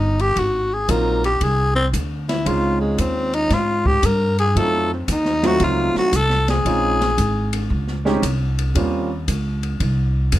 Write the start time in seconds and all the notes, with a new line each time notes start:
Already playing: G1 D#4
0.19 G4, ride
0.36 G#1 F#4, kick, ride
0.74 G#4
0.88 A#1 F#3 A#3 C4 D#4 F4 A#4, kick, hi-hat pedal, ride
1.24 G4, ride
1.41 C2 G#4, kick, ride
1.76 C4
1.93 D2, kick, hi-hat pedal, ride
2.29 E4, snare, ride
2.45 C#2 G#3 C4 C#4 D#4 F4, kick, ride
2.81 G#3
2.98 D#2 C4, kick, hi-hat pedal, ride
3.33 D#4, ride
3.50 G#2 F4, kick, snare, ride
3.86 G4, kick
4.03 G2 A#4, kick, hi-hat pedal, ride
4.38 G#4, ride
4.55 F2 F#3 A3 C4 D#4 F4 A4, kick, ride
4.93 C4
5.08 D#2 D#4, kick, hi-hat pedal, ride
5.25 snare
5.43 F#3 A3 C4 D#4 F4 F#4, snare, ride
5.60 C#2 F4, kick, ride
5.95 F#4, muted upright bass stroke, snare
6.13 C2 A4, kick, hi-hat pedal, ride
6.30 snare
6.48 G#4, snare, ride
6.65 A#1 G#3 C4 C#4 D#4 F4, kick, ride
7.01 snare, ride
7.18 G#1, kick, hi-hat pedal, ride
7.53 ride
7.70 C#2, kick
7.87 snare
8.05 G#3 C4 C#4 D#4 G4, snare
8.22 C2, kick, hi-hat pedal, ride
8.59 ride
8.75 D#2 G3 A#3 C4 C#4 F4, kick, ride
9.28 C#2, kick, hi-hat pedal, ride
9.63 ride
9.80 C2, kick, ride
10.32 F2, kick, hi-hat pedal, ride